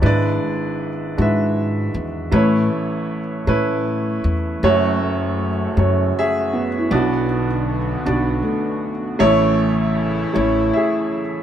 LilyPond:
<<
  \new Staff \with { instrumentName = "Grand piano" } { \time 6/8 \key fis \minor \tempo 4. = 52 << { <b' d''>4. <b' e''>4. | cis''2 r4 | r2 <gis' e''>4 | fis'4. fis'4 r8 |
r4. e'8 <gis' e''>4 | } \\ { <gis d' e' b'>4 r8 <gis d' e' fis'>4 r8 | <a cis' e' b'>4 r8 <a cis' e' b'>4 r8 | <a cis' fis' cis''>4 r8 <a cis' fis' cis''>4 r8 | <b d' fis' d''>4 r8 <b d' fis' d''>4 r8 |
<a cis' e' cis''>4 r8 <a cis' e' cis''>4 r8 | } >> }
  \new Staff \with { instrumentName = "Grand piano" } { \clef bass \time 6/8 \key fis \minor <gis,, gis,>2. | <a,, a,>2. | <fis,, fis,>2. | <b,, b,>2. |
<a,, a,>2. | }
  \new Staff \with { instrumentName = "Felt piano" } { \time 6/8 \key fis \minor b16 r2 r8. | r2. | r8 a2 b16 e'16~ | e'8. r4 r16 a4~ |
a8 r2 r8 | }
  \new Staff \with { instrumentName = "Analog synth pad" } { \time 6/8 \key fis \minor << { r2. | r2. | fis'2.~ | fis'2. |
e'2. | } \\ { r2. | r2. | <cis a>2. | <d b>2. |
<cis a>2. | } >> }
  \new Staff \with { instrumentName = "Upright bass" } { \clef bass \time 6/8 \key fis \minor gis,8 r4 gis,4 e,8 | a,8 r4 a,4 e,8 | fis,4. fis,8 r4 | b,,4. b,,8 r4 |
a,,4. a,,8 r4 | }
>>